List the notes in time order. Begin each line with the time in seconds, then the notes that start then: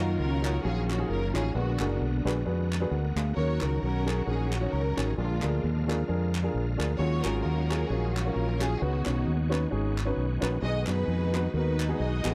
Already playing: D#3 F#3 A#3 C#4 D#4 F4 F#4 A#4 F5
0.00 F#2 F#4 D#5
0.18 C#2 C#4 F#4 A#4
0.42 D#4 F4 F#4 C#5, clap
0.63 A#1 C#4 D#4 F4 F#4 G#4
0.89 F#4, clap
0.98 D#4 F4 F#4 G#4
1.09 F#1 A#4
1.34 A1 D#4 F4 F#4 G#4 C#5, clap
1.54 A#1 A#2 D3 G#3 B3 D4 F#4 G#4 A#4 B4
1.79 F#1 D4 F#4 G#4 A#4, clap
2.00 B1
2.25 A#1 D4 F#4 G#4 B4, clap
2.45 F2 D4 F#4 G#4 B4
2.73 clap
2.80 D4 F#4 G#4 B4
2.91 D2 A#4 F#5
3.16 D2 G#4 F5, clap
3.36 D#2 D#3 F#3 C#4 D#4 F#4 A#4 C#5
3.61 C#2 C#4 D#4 F#4 A#4, clap
3.82 B1 C#4 F#4 A#4
4.06 C#4 D#4 F#4 G#4, clap
4.26 A#1 C#4 D#4 F#4 G#4 A#4
4.52 F#4, clap
4.61 C#4 D#4 F#4 C#5
4.72 C#2 A#4
4.97 A1 C#4 D#4 F#4 G#4 A#4, clap
5.17 A#1 A#2 D3 F3 G#3 D4 F4 G#4 A#4 F5
5.42 D2 D4 F4 G#4 A#4, clap
5.64 D#2
5.87 D4 F4 G#4 A#4, clap
6.08 F2 D4 F4 G#4 A#4
6.35 clap
6.43 D4 F4 G#4 A#4
6.54 A#1
6.77 D2 D4 F4 G#4 A#4, clap
6.98 D#2 D#3 F#3 G#3 C#4 F4 F#4 G#4 C#5
7.23 G#1 C#4 F4 F#4 G#4 A#4, clap
7.43 D#2 C#4 F#4 A#4
7.69 C#4 F4 F#4 G#4, clap
7.88 A#1 C#4 F4 F#4 G#4 A#4
8.14 F#4, clap
8.25 C#4 F4 F#4 A#4
8.35 A#1 A#4
8.59 C#4 F4 F#4 G#4, clap
8.80 C#2 C#3 B3 C#4 D#4 F#4 B4
9.05 B1 C#4 D#4 F#4 C#5, clap
9.27 D#2
9.50 C#4 D#4 F#4 B4, clap
9.70 G#1 C#4 D#4 F#4 G#4
9.98 clap
10.05 C#4 D#4 F#4 B4
10.17 B1
10.41 A#1 C#4 D#4 F#4 B4, clap
10.62 B1 B2 B3 D#4 F#4 G#4 D#5
10.87 F#2 B3 D#4 F#4 B4, clap
10.91 D#4 F#4 B4
11.08 F2
11.33 B3 D#4 F#4 B4, clap
11.54 D#2 B3 D#4 F#4 A#4 B4
11.80 clap
11.88 B3 D#4 F#4 G#4
11.99 B1 F#4 G#4 D#5
12.23 A1 B3 D#4 F#4 G#4, clap